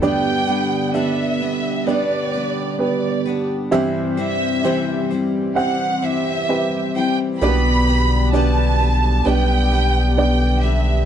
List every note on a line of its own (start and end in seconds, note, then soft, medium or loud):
0.02 1.37 G2 soft
0.02 1.37 D3 soft
0.02 3.69 D3 medium
0.02 0.49 G3 medium
0.02 7.38 G3 medium
0.02 0.90 B3 medium
0.02 3.69 B3 medium
0.02 0.47 B3 medium
0.02 0.91 D4 medium
0.02 0.48 D4 medium
0.02 0.90 G4 medium
0.02 11.05 G4 medium
0.02 0.46 B4 medium
0.02 0.91 D5 medium
0.02 0.92 G5 medium
0.47 0.93 G3 soft
0.47 0.94 B3 soft
0.47 0.94 D4 soft
0.47 0.95 B4 medium
0.94 1.41 G3 medium
0.94 1.82 B3 medium
0.94 1.41 B3 medium
0.94 1.82 D4 medium
0.94 1.41 D4 medium
0.94 1.83 G4 soft
0.94 1.39 B4 medium
0.94 1.83 E5 medium
0.98 1.89 E5 medium
1.40 1.88 B3 soft
1.40 1.87 D4 soft
1.40 1.87 B4 soft
1.87 2.33 G3 soft
1.87 2.75 B3 medium
1.87 2.35 B3 medium
1.87 2.75 D4 medium
1.87 2.34 D4 medium
1.87 2.75 G4 medium
1.87 2.33 B4 medium
1.87 2.75 D5 medium
1.87 2.81 D5 medium
2.34 3.26 B3 soft
2.34 3.28 D4 soft
2.34 3.24 B4 soft
2.79 3.67 B3 medium
2.79 3.68 D4 medium
2.79 3.68 G4 medium
2.79 3.68 B4 medium
2.79 3.46 D5 medium
3.26 3.73 B3 soft
3.26 3.73 D4 soft
3.26 3.72 B4 soft
3.71 5.06 G2 medium
3.71 4.18 C3 medium
3.71 7.37 E3 medium
3.71 4.18 E3 medium
3.71 4.17 G3 medium
3.71 7.37 C4 medium
3.71 4.60 C4 medium
3.71 4.17 C4 medium
3.71 4.60 E4 medium
3.71 4.17 E4 medium
3.71 4.60 G4 medium
3.71 4.16 C5 medium
3.71 4.60 E5 loud
4.17 4.63 C3 soft
4.17 4.63 E3 soft
4.17 4.63 G3 soft
4.17 4.64 C4 medium
4.17 4.64 E4 soft
4.17 4.64 C5 medium
4.17 5.07 E5 medium
4.64 5.10 C3 medium
4.64 5.11 E3 medium
4.64 5.11 G3 medium
4.64 5.52 C4 medium
4.64 5.11 C4 medium
4.64 5.52 E4 medium
4.64 5.11 E4 medium
4.64 5.52 G4 medium
4.64 5.53 C5 medium
4.64 5.09 C5 medium
5.11 5.55 G3 soft
5.11 5.57 C4 soft
5.11 5.58 E4 soft
5.11 5.57 C5 soft
5.55 6.03 G3 soft
5.55 6.44 C4 medium
5.55 6.03 C4 medium
5.55 6.44 E4 medium
5.55 6.02 E4 medium
5.55 6.44 G4 medium
5.55 6.44 F#5 medium
5.55 6.00 F#5 medium
5.60 6.01 C5 medium
6.02 6.98 G3 soft
6.02 6.96 C4 soft
6.02 6.95 E4 soft
6.02 6.94 C5 soft
6.02 6.95 E5 medium
6.49 7.37 C4 medium
6.49 7.37 E4 medium
6.49 7.37 G4 medium
6.49 7.37 B4 medium
6.95 7.41 G3 soft
6.95 7.42 C4 soft
6.95 7.42 E4 soft
6.95 7.41 C5 soft
6.95 7.16 G5 medium
7.41 9.22 B1 loud
7.41 8.76 B2 medium
7.41 11.05 D3 medium
7.41 11.05 G3 medium
7.41 7.48 A#3 medium
7.41 11.05 B3 medium
7.41 7.88 B3 medium
7.41 8.29 D4 medium
7.41 7.88 D4 medium
7.41 8.30 G4 medium
7.41 7.87 G4 medium
7.41 7.86 B4 medium
7.41 8.30 D5 medium
7.41 8.30 B5 loud
7.48 8.32 B3 medium
7.87 8.32 B3 soft
7.87 8.33 D4 soft
7.87 8.34 G4 soft
7.87 8.34 B4 medium
8.33 9.21 B3 medium
8.33 8.80 B3 medium
8.33 9.21 D4 medium
8.33 8.80 D4 medium
8.33 9.21 G4 medium
8.33 8.80 G4 medium
8.33 8.78 B4 medium
8.33 9.22 D5 medium
8.33 9.26 A5 medium
8.79 9.25 D4 soft
8.79 9.26 G4 soft
8.79 9.26 B4 soft
9.25 11.05 B1 medium
9.25 9.72 B3 medium
9.25 10.14 B3 medium
9.25 10.14 D4 medium
9.25 9.72 D4 medium
9.25 10.14 G4 medium
9.25 9.72 G4 medium
9.25 9.70 B4 medium
9.25 10.14 D5 medium
9.25 10.17 G5 loud
9.72 10.66 D4 soft
9.72 10.64 G4 soft
9.72 10.62 B4 soft
10.17 11.05 B3 medium
10.17 11.05 D4 medium
10.17 11.05 G4 medium
10.17 11.05 D5 medium
10.17 10.61 G5 medium
10.62 11.05 G4 soft
10.62 11.05 B4 soft
10.62 11.05 E5 medium
10.66 11.05 D4 soft